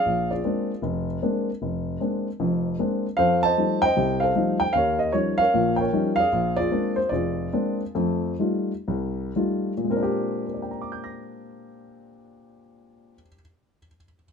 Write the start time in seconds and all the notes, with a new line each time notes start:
Already playing: G#4 D5 F5
0.06 A#1
0.31 F4 G#4 D5
0.44 G#3 A#3 C4 D4
0.82 F1
1.22 G#3 A#3 C4 D4
1.62 F1
2.00 G#3 A#3 C4 D4
2.40 F1 F2
2.79 G#3 A#3 C4 D4
3.17 F2 A4 C5 F5
3.43 C5 D#5 A5
3.58 F3 G3 A3 D#4
3.82 C5 D#5 G5
3.97 C2 C3
4.20 A4 C5 F5
4.36 F3 G3 A3 D#4
4.60 G5
4.73 D#2 F5
4.77 A#4 C#5
4.99 D#5
5.12 F3 G3 C#4 D#4 C#5
5.38 A#4 C#5 F5
5.54 A#1 A#2
5.76 A#4 G5
5.80 C#5
5.93 F3 G3 C#4 D#4
6.16 G#4 D5 F5
6.32 A#1
6.56 F4 G#4 D5
6.71 G#3 A#3 C4 D4
6.96 C5
7.09 F1 F4 G#4 D5
7.53 G#3 A#3 C4 D4
7.95 F2 A3
8.39 G3 A3 D#4 F4
8.88 C2
9.36 G3 A3 D#4 F4
9.77 A#2
9.84 G#3
9.90 C4 A#4
9.97 D4
10.03 G4
10.47 A#4
10.54 D5
10.62 G5
10.71 A#5
10.82 D6
10.92 G6
11.04 A#6